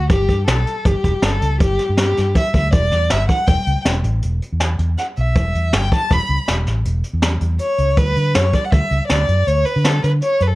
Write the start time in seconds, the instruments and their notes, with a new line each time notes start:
0.10 fingered electric bass G1, violin G4, kick, closed hi-hat
0.29 fingered electric bass G2, kick, closed hi-hat
0.47 fingered electric bass B1, violin A4, snare, closed hi-hat
0.67 closed hi-hat
0.85 fingered electric bass G1, violin G4, kick, closed hi-hat
1.04 fingered electric bass E1, kick, closed hi-hat
1.22 fingered electric bass G1, violin A4, snare, closed hi-hat
1.41 fingered electric bass C#2, closed hi-hat
1.60 fingered electric bass G1, violin G4, kick, closed hi-hat
1.79 snare, closed hi-hat
1.89 fingered electric bass G2
1.97 violin G4, snare, closed hi-hat
2.17 fingered electric bass G2, snare, closed hi-hat
2.35 violin E5, kick, closed hi-hat
2.54 fingered electric bass D2, violin E5, kick, closed hi-hat
2.72 fingered electric bass E1, violin D5, kick, closed hi-hat
2.91 fingered electric bass E2, snare, closed hi-hat
3.10 fingered electric bass G1, violin E5, snare, closed hi-hat
3.29 violin F#5, kick, closed hi-hat
3.47 fingered electric bass E1, violin G5, kick, closed hi-hat
3.66 fingered electric bass C#2, closed hi-hat
3.85 fingered electric bass E1, snare, closed hi-hat
4.03 fingered electric bass A1, closed hi-hat
4.22 fingered electric bass E1, closed hi-hat
4.42 closed hi-hat
4.52 fingered electric bass E2
4.60 snare, closed hi-hat
4.79 fingered electric bass E2, closed hi-hat
4.98 violin F#5, snare, closed hi-hat
5.17 fingered electric bass B1, violin E5, closed hi-hat
5.36 kick, closed hi-hat
5.55 fingered electric bass E2, closed hi-hat
5.73 fingered electric bass G1, violin G5, snare, closed hi-hat
5.92 violin A5, kick, closed hi-hat
6.11 fingered electric bass E1, violin B5, kick, snare, closed hi-hat
6.29 fingered electric bass C#2, closed hi-hat
6.48 fingered electric bass E1, snare, closed hi-hat
6.67 fingered electric bass A1, snare, closed hi-hat
6.85 fingered electric bass E1, closed hi-hat
7.04 closed hi-hat
7.13 fingered electric bass E2
7.22 snare, closed hi-hat
7.41 fingered electric bass E2, closed hi-hat
7.59 violin C#5, closed hi-hat
7.78 fingered electric bass C#2, closed hi-hat
7.97 fingered electric bass D2, violin B4, kick, closed hi-hat
8.16 fingered electric bass D3, closed hi-hat
8.35 fingered electric bass F#2, violin C#5, snare, closed hi-hat
8.53 violin D5, kick, closed hi-hat
8.65 violin F#5
8.71 fingered electric bass D2, violin E5, kick, closed hi-hat
8.91 fingered electric bass C#2, closed hi-hat
9.08 fingered electric bass D2, violin D5, snare, closed hi-hat
9.28 fingered electric bass F#2, closed hi-hat
9.47 fingered electric bass D2, violin C#5, closed hi-hat
9.65 violin B4, closed hi-hat
9.76 fingered electric bass D3
9.84 violin A4, snare, closed hi-hat
10.03 fingered electric bass D3, violin B4, closed hi-hat
10.22 violin C#5, closed hi-hat
10.40 fingered electric bass F#2, violin B4, closed hi-hat
10.47 violin A4